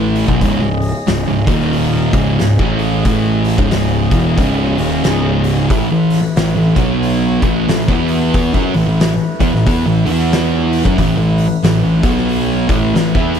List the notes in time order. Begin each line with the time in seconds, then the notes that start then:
Already playing: A1 A2 E3 A3 E4 B4
0.16 open hi-hat
0.27 B1 B2 F#3 C#4 G#4 D#5, kick
0.41 C#1 C#2 G#2, kick, open hi-hat
0.61 C#1 C#2 G#2
0.82 open hi-hat
1.07 C#1 C#2 G#2, snare, open hi-hat
1.27 C#1 C#2 G#2
1.46 D#1 D#2 A#2 D#3 D#4 A#4, kick, open hi-hat
1.61 snare
1.73 open hi-hat
2.13 C#1 C#2 G#2 C#3 C#4 G#4, kick, open hi-hat
2.39 C#1 C#2 G#2, snare, open hi-hat
2.59 A1 A2 E3 A3, kick
2.79 open hi-hat
3.05 A1 A2 E3 A3, kick, open hi-hat
3.45 open hi-hat
3.58 C#1 C#2 G#2 C#3, kick
3.71 snare, open hi-hat
4.11 E1 E2 B2 E3, kick, open hi-hat
4.37 C#1 C#2 G#2 C#3, kick, open hi-hat
4.78 D#1 D#2 A#2 D#3, open hi-hat
5.03 C#1 C#2 G#2 C#3, snare, open hi-hat
5.44 open hi-hat
5.70 A1 A2 E3 A3 E4 B4, kick, open hi-hat
5.89 A1 A2 E3
6.10 snare, open hi-hat
6.36 A1 A2 E3, snare, open hi-hat
6.55 A1 A2 E3
6.76 B1 B2 F#3 B3 F#4 C#5, kick, open hi-hat
7.03 open hi-hat
7.42 A1 A2 E3 A3 E4 B4, kick, open hi-hat
7.68 A1 A2 E3, snare, open hi-hat
7.88 E2 E3 B3 E4 F#4, kick
8.08 open hi-hat
8.34 kick, open hi-hat
8.54 F#2 F#3 A3 C#4 E4 B4, kick
8.74 A1 A2 E3, snare, open hi-hat
8.88 A1 A2 E3
9.00 snare, open hi-hat
9.40 E2 E3 B3, kick, open hi-hat
9.53 A1 A2 E3, snare
9.66 E2 E3 B3, kick, open hi-hat
9.86 A1 A2 E3
10.06 E2 E3 B3 E4 F#4, open hi-hat
10.32 snare, open hi-hat
10.73 open hi-hat
10.85 F#2 F#3 A3 C#4 E4 B4, kick
10.98 A1 A2 E3, kick, open hi-hat
11.18 A1 A2 E3
11.38 open hi-hat
11.63 A1 A2 E3, snare, open hi-hat
11.83 A1 A2 E3
12.02 B1 B2 F#3 B3 F#4 C#5, kick, open hi-hat
12.17 snare
12.29 open hi-hat
12.68 A1 A2 E3 A3 E4 B4, kick, open hi-hat
12.94 A1 A2 E3, snare, open hi-hat
13.15 E2 E3 B3 E4, kick
13.35 open hi-hat